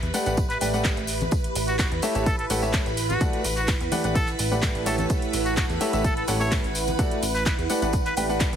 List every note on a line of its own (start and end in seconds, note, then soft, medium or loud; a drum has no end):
0.00 0.12 E2 loud
0.00 1.32 A3 medium
0.00 3.21 G4 medium
0.00 3.21 B4 medium
0.00 8.56 B4 medium
0.00 3.21 E5 medium
0.00 8.56 B5 medium
0.00 closed hi-hat soft
0.00 cabasa soft
0.14 0.24 A3 medium
0.14 0.24 G4 medium
0.14 0.24 B4 medium
0.14 0.24 D5 medium
0.14 0.24 F#5 medium
0.14 open hi-hat medium
0.14 tambourine medium
0.14 tambourine loud
0.14 cabasa medium
0.26 0.58 A1 loud
0.26 0.37 A3 medium
0.26 0.37 G4 medium
0.26 0.37 B4 medium
0.26 0.37 D5 medium
0.26 0.37 F#5 medium
0.26 closed hi-hat medium
0.26 tambourine medium
0.26 cabasa soft
0.37 kick loud
0.37 closed hi-hat medium
0.37 tambourine soft
0.37 tambourine medium
0.37 cabasa soft
0.50 0.57 B4 medium
0.50 snare soft
0.50 closed hi-hat soft
0.50 cabasa soft
0.61 0.93 A1 medium
0.61 0.72 A3 medium
0.61 0.72 G4 medium
0.61 0.69 B4 medium
0.61 0.72 B4 medium
0.61 0.72 D5 medium
0.61 0.72 G5 medium
0.61 open hi-hat loud
0.61 tambourine medium
0.61 tambourine loud
0.61 cabasa medium
0.74 0.91 A3 medium
0.74 0.91 G4 medium
0.74 0.91 B4 medium
0.74 0.91 D5 medium
0.74 0.91 F#5 medium
0.74 tambourine medium
0.74 cabasa soft
0.84 kick loud
0.84 snare loud
0.84 clap loud
0.84 closed hi-hat medium
0.84 tambourine medium
0.84 cabasa soft
0.97 1.28 A1 loud
0.97 closed hi-hat soft
0.97 cabasa soft
1.07 open hi-hat loud
1.07 tambourine loud
1.07 tambourine medium
1.07 cabasa medium
1.21 closed hi-hat soft
1.21 tambourine medium
1.21 high conga loud
1.21 cabasa soft
1.31 8.56 E4 medium
1.31 kick loud
1.31 closed hi-hat medium
1.31 tambourine medium
1.31 tambourine soft
1.31 cabasa soft
1.44 closed hi-hat medium
1.44 cabasa soft
1.55 1.88 A1 loud
1.55 open hi-hat loud
1.55 tambourine medium
1.55 tambourine loud
1.55 cabasa medium
1.68 1.75 F#4 medium
1.68 closed hi-hat soft
1.68 tambourine medium
1.68 cabasa soft
1.79 1.87 F#4 medium
1.79 kick loud
1.79 snare loud
1.79 clap loud
1.79 closed hi-hat medium
1.79 tambourine medium
1.79 cabasa soft
1.92 2.01 E2 medium
1.92 closed hi-hat soft
1.92 cabasa soft
2.02 2.13 A3 medium
2.02 2.13 G4 medium
2.02 2.13 A4 medium
2.02 2.13 C#5 medium
2.02 2.13 E5 medium
2.02 open hi-hat loud
2.02 tambourine loud
2.02 tambourine medium
2.02 cabasa medium
2.15 2.47 A1 loud
2.15 2.26 A3 medium
2.15 2.26 G4 medium
2.15 2.26 A4 medium
2.15 2.26 C#5 medium
2.15 2.26 E5 medium
2.15 closed hi-hat medium
2.15 tambourine soft
2.15 cabasa soft
2.26 2.34 A4 medium
2.26 kick loud
2.26 closed hi-hat medium
2.26 tambourine medium
2.26 tambourine soft
2.26 cabasa soft
2.39 2.46 A4 medium
2.39 closed hi-hat soft
2.39 cabasa soft
2.50 2.82 A1 medium
2.50 2.61 A3 medium
2.50 2.61 G4 medium
2.50 2.61 A4 medium
2.50 2.61 C#5 medium
2.50 2.61 F#5 medium
2.50 open hi-hat loud
2.50 tambourine medium
2.50 cabasa medium
2.62 2.80 A3 medium
2.62 2.80 G4 medium
2.62 2.80 A4 medium
2.62 2.80 C#5 medium
2.62 2.80 E5 medium
2.62 tambourine medium
2.62 cabasa soft
2.73 kick loud
2.73 snare loud
2.73 clap loud
2.73 closed hi-hat medium
2.73 tambourine soft
2.73 tambourine loud
2.73 cabasa soft
2.86 3.17 A1 loud
2.86 closed hi-hat soft
2.86 cabasa soft
2.97 open hi-hat loud
2.97 tambourine medium
2.97 cabasa medium
3.10 3.22 F#4 medium
3.10 closed hi-hat soft
3.10 tambourine medium
3.10 high conga medium
3.10 cabasa soft
3.21 3.39 A3 medium
3.21 3.39 F#4 medium
3.21 3.39 A4 medium
3.21 3.39 D5 medium
3.21 3.39 F#5 loud
3.21 kick loud
3.21 closed hi-hat medium
3.21 tambourine medium
3.21 tambourine soft
3.21 cabasa soft
3.26 8.56 F#5 medium
3.33 closed hi-hat soft
3.33 cabasa soft
3.44 3.77 A1 loud
3.44 open hi-hat loud
3.44 tambourine loud
3.44 tambourine medium
3.44 cabasa medium
3.53 3.69 F#4 medium
3.53 8.56 B4 medium
3.53 8.56 E5 medium
3.53 snare soft
3.53 closed hi-hat soft
3.53 tambourine medium
3.57 cabasa soft
3.68 kick loud
3.68 snare loud
3.68 clap loud
3.68 closed hi-hat medium
3.68 tambourine medium
3.68 cabasa soft
3.81 3.90 E2 medium
3.81 closed hi-hat soft
3.81 cabasa soft
3.91 4.02 A3 medium
3.91 4.02 G4 medium
3.91 4.02 B4 medium
3.91 4.02 D5 medium
3.91 4.02 F#5 medium
3.91 open hi-hat medium
3.91 tambourine medium
3.91 high conga medium
3.91 cabasa medium
4.04 4.36 A1 loud
4.04 4.15 A3 medium
4.04 4.15 G4 medium
4.04 4.15 B4 medium
4.04 4.15 D5 medium
4.04 4.15 F#5 medium
4.04 closed hi-hat medium
4.04 tambourine medium
4.04 cabasa soft
4.15 4.29 A4 medium
4.15 kick loud
4.15 closed hi-hat medium
4.15 tambourine soft
4.15 tambourine medium
4.15 cabasa soft
4.27 snare soft
4.27 closed hi-hat soft
4.27 cabasa soft
4.39 4.71 A1 medium
4.39 open hi-hat loud
4.39 tambourine medium
4.39 tambourine loud
4.39 cabasa medium
4.51 4.84 A3 medium
4.51 4.84 G4 medium
4.51 4.84 B4 medium
4.51 4.84 D5 medium
4.51 4.84 F#5 medium
4.51 tambourine medium
4.51 cabasa soft
4.62 kick loud
4.62 snare loud
4.62 clap loud
4.62 closed hi-hat medium
4.62 tambourine medium
4.62 tambourine soft
4.62 cabasa soft
4.75 5.06 A1 loud
4.75 closed hi-hat soft
4.75 cabasa soft
4.86 5.78 A3 medium
4.86 5.78 G4 medium
4.86 4.94 A4 medium
4.86 5.78 A4 medium
4.86 5.78 C#5 medium
4.86 5.78 E5 medium
4.86 open hi-hat loud
4.86 tambourine medium
4.86 cabasa medium
4.98 5.06 A4 medium
4.98 closed hi-hat soft
4.98 tambourine soft
4.98 high conga loud
4.98 cabasa soft
5.09 kick loud
5.09 closed hi-hat medium
5.09 tambourine soft
5.09 tambourine medium
5.09 cabasa soft
5.22 closed hi-hat soft
5.22 cabasa soft
5.33 5.66 A1 loud
5.33 open hi-hat loud
5.33 tambourine medium
5.33 cabasa medium
5.46 5.53 F#4 medium
5.46 tambourine soft
5.46 cabasa soft
5.57 5.65 F#4 medium
5.57 kick loud
5.57 snare loud
5.57 clap loud
5.57 closed hi-hat medium
5.57 tambourine soft
5.57 tambourine loud
5.57 cabasa soft
5.70 5.79 E2 medium
5.70 closed hi-hat soft
5.70 cabasa soft
5.81 5.91 A3 medium
5.81 5.91 G4 medium
5.81 5.91 A4 medium
5.81 5.91 C#5 medium
5.81 5.91 E5 medium
5.81 open hi-hat medium
5.81 tambourine loud
5.81 tambourine medium
5.81 cabasa medium
5.93 6.25 A1 medium
5.93 6.04 A3 medium
5.93 6.04 G4 medium
5.93 6.04 A4 medium
5.93 6.04 C#5 medium
5.93 6.04 E5 medium
5.93 closed hi-hat medium
5.93 tambourine medium
5.93 cabasa soft
6.04 6.12 A4 medium
6.04 kick loud
6.04 closed hi-hat medium
6.04 tambourine medium
6.04 cabasa soft
6.17 6.24 A4 medium
6.17 closed hi-hat soft
6.17 cabasa soft
6.28 6.60 A1 medium
6.28 6.39 A3 medium
6.28 6.38 G4 medium
6.28 6.38 A4 medium
6.28 6.39 C#5 medium
6.28 6.39 F#5 medium
6.28 open hi-hat loud
6.28 tambourine medium
6.28 cabasa medium
6.40 6.58 A3 medium
6.40 6.58 G4 medium
6.40 6.58 A4 medium
6.40 6.53 C#5 medium
6.40 6.58 C#5 medium
6.40 6.58 E5 medium
6.40 tambourine medium
6.40 cabasa soft
6.51 kick loud
6.51 snare loud
6.51 clap loud
6.51 closed hi-hat medium
6.51 tambourine medium
6.51 cabasa soft
6.64 6.95 A1 loud
6.64 closed hi-hat soft
6.64 cabasa soft
6.75 open hi-hat loud
6.75 tambourine medium
6.75 cabasa medium
6.87 closed hi-hat soft
6.87 tambourine medium
6.87 high conga medium
6.87 cabasa soft
6.99 7.17 A3 medium
6.99 7.17 F#4 medium
6.99 7.17 A4 medium
6.99 7.17 D5 medium
6.99 7.17 F#5 medium
6.99 kick loud
6.99 closed hi-hat medium
6.99 tambourine soft
6.99 tambourine medium
6.99 cabasa soft
7.11 closed hi-hat medium
7.11 cabasa soft
7.22 7.55 A1 loud
7.22 open hi-hat loud
7.22 tambourine medium
7.22 cabasa medium
7.35 7.42 B4 medium
7.35 snare soft
7.35 closed hi-hat soft
7.35 tambourine medium
7.35 cabasa soft
7.46 7.54 B4 medium
7.46 kick loud
7.46 snare loud
7.46 clap loud
7.46 closed hi-hat medium
7.46 tambourine medium
7.46 cabasa soft
7.58 7.67 E2 medium
7.58 closed hi-hat soft
7.58 cabasa soft
7.70 7.80 A3 medium
7.70 7.80 G4 medium
7.70 7.80 B4 medium
7.70 7.80 D5 medium
7.70 7.80 F#5 medium
7.70 open hi-hat medium
7.70 tambourine medium
7.70 cabasa medium
7.82 8.13 A1 medium
7.82 7.93 A3 medium
7.82 7.93 G4 medium
7.82 7.93 B4 medium
7.82 7.93 D5 medium
7.82 7.93 F#5 medium
7.82 closed hi-hat medium
7.82 tambourine medium
7.82 cabasa soft
7.93 kick loud
7.93 closed hi-hat medium
7.93 tambourine medium
7.93 tambourine soft
7.93 cabasa soft
8.06 8.13 B4 medium
8.06 snare soft
8.06 closed hi-hat soft
8.06 cabasa soft
8.17 8.49 A1 medium
8.17 8.27 A3 medium
8.17 8.28 G4 medium
8.17 8.25 B4 medium
8.17 8.27 B4 medium
8.17 8.28 D5 medium
8.17 8.27 G5 medium
8.17 open hi-hat loud
8.17 tambourine medium
8.17 cabasa medium
8.29 8.47 A3 medium
8.29 8.47 G4 medium
8.29 8.47 B4 medium
8.29 8.47 D5 medium
8.29 8.47 F#5 medium
8.29 closed hi-hat soft
8.29 tambourine soft
8.29 cabasa soft
8.40 kick loud
8.40 snare loud
8.40 clap loud
8.40 closed hi-hat medium
8.40 tambourine loud
8.40 tambourine soft
8.40 cabasa soft
8.53 8.56 A1 loud
8.53 closed hi-hat soft